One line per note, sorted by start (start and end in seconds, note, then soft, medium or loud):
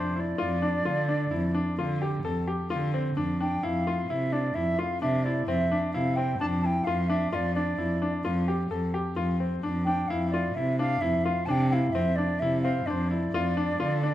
0.00 0.32 F2 medium
0.00 0.11 D4 medium
0.00 0.22 C5 medium
0.16 0.35 E4 medium
0.20 2.03 D5 medium
0.38 0.78 F2 medium
0.38 0.57 F4 medium
0.62 0.81 D4 medium
0.85 1.24 D3 medium
0.85 1.04 F4 medium
1.08 1.27 D4 medium
1.31 1.51 F2 medium
1.31 1.50 E4 medium
1.55 1.73 D4 medium
1.78 2.16 D3 medium
1.78 1.97 F4 medium
2.02 2.20 G4 medium
2.24 2.43 F2 medium
2.24 2.43 A4 medium
2.48 2.66 G4 medium
2.70 3.09 D3 medium
2.70 2.89 F4 medium
2.94 3.12 C4 medium
3.17 3.55 F2 medium
3.17 3.35 D4 medium
3.40 3.59 D4 medium
3.40 3.65 G5 medium
3.63 4.01 F2 medium
3.63 3.82 E4 medium
3.63 4.12 F5 medium
3.87 4.05 F4 medium
4.10 4.48 C3 medium
4.10 4.28 E4 medium
4.10 4.34 E5 medium
4.32 4.51 D4 medium
4.32 4.56 D5 medium
4.54 4.75 F2 medium
4.54 4.74 E4 medium
4.54 4.80 E5 medium
4.79 4.97 F4 medium
4.79 5.01 F5 medium
5.02 5.40 C3 medium
5.02 5.20 D4 medium
5.02 5.25 E5 medium
5.24 5.44 E4 medium
5.24 5.46 D5 medium
5.47 5.67 F2 medium
5.47 5.67 C4 medium
5.47 5.90 E5 medium
5.72 5.90 D4 medium
5.93 6.33 C3 medium
5.93 6.13 E4 medium
5.93 6.17 F5 medium
6.16 6.36 C4 medium
6.16 6.39 G5 medium
6.40 6.79 F2 medium
6.40 6.59 D4 medium
6.40 6.46 A5 medium
6.62 6.82 E4 medium
6.62 6.86 G5 medium
6.62 6.67 A5 medium
6.84 7.25 F2 medium
6.84 7.05 F4 medium
6.84 7.10 F5 medium
7.08 7.28 D4 medium
7.08 7.31 E5 medium
7.31 7.71 F2 medium
7.31 7.51 F4 medium
7.31 7.53 D5 medium
7.31 7.36 E5 medium
7.55 7.75 D4 medium
7.55 8.20 D5 medium
7.78 7.98 F2 medium
7.78 7.97 E4 medium
8.02 8.20 D4 medium
8.25 8.63 F2 medium
8.25 8.43 F4 medium
8.48 8.67 G4 medium
8.71 8.90 F2 medium
8.71 8.90 A4 medium
8.94 9.13 G4 medium
9.16 9.55 F2 medium
9.16 9.35 F4 medium
9.40 9.59 C4 medium
9.63 10.02 F2 medium
9.63 9.82 D4 medium
9.85 10.05 D4 medium
9.85 10.10 G5 medium
10.08 10.48 F2 medium
10.08 10.29 E4 medium
10.08 10.30 F5 medium
10.31 10.52 F4 medium
10.31 10.56 D5 medium
10.55 10.94 C3 medium
10.55 10.75 E4 medium
10.55 10.78 E5 medium
10.79 10.98 D4 medium
10.79 11.02 F5 medium
11.01 11.21 F2 medium
11.01 11.21 E4 medium
11.01 11.26 E5 medium
11.24 11.44 F4 medium
11.24 11.47 F5 medium
11.46 11.87 C3 medium
11.46 11.67 D4 medium
11.46 11.51 A5 medium
11.50 11.69 G5 medium
11.70 11.91 E4 medium
11.70 11.94 F5 medium
11.70 11.74 G5 medium
11.92 12.14 F2 medium
11.92 12.13 C4 medium
11.92 12.17 E5 medium
12.16 12.37 D4 medium
12.16 12.41 D5 medium
12.39 12.79 C3 medium
12.39 12.60 E4 medium
12.39 12.61 E5 medium
12.62 12.83 C4 medium
12.62 12.88 F5 medium
12.86 13.25 F2 medium
12.86 13.06 D4 medium
12.86 12.91 D5 medium
12.90 13.10 C5 medium
13.09 13.29 E4 medium
13.09 14.14 D5 medium
13.33 13.72 F2 medium
13.33 13.53 F4 medium
13.57 13.76 D4 medium
13.79 14.14 D3 medium
13.79 13.99 F4 medium
14.03 14.14 D4 medium